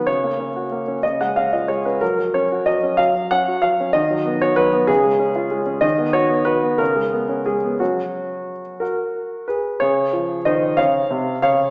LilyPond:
<<
  \new Staff \with { instrumentName = "Grand piano" } { \time 6/8 \key fis \major \tempo 4. = 62 cis''4. dis''16 fis''16 eis''16 dis''16 cis''16 b'16 | ais'8 cis''8 dis''8 eis''8 fis''8 eis''8 | dis''8. cis''16 b'8 gis'4. | dis''8 cis''8 b'8 ais'4 gis'8 |
fis'4. <fis' ais'>4 <gis' b'>8 | \key des \major <aes' des''>4 <c'' ees''>8 <des'' f''>4 <des'' f''>8 | }
  \new Staff \with { instrumentName = "Grand piano" } { \time 6/8 \key fis \major cis16 ais16 cis'16 fis'16 ais16 cis'16 cis16 gis16 cis'16 eis'16 gis16 cis'16 | fis16 fis16 cis'16 fis'16 fis16 cis'16 fis16 fis16 cis'16 fis'16 fis16 cis'16 | dis16 fis16 b16 fis'16 fis16 b16 cis16 gis16 cis'16 eis'16 gis16 cis'16 | dis16 b16 fis'16 b16 fis'16 b16 cis16 gis16 b16 cis'16 gis16 b16 |
<fis cis'>4. r4. | \key des \major des8 f8 ees8 des8 c8 des8 | }
>>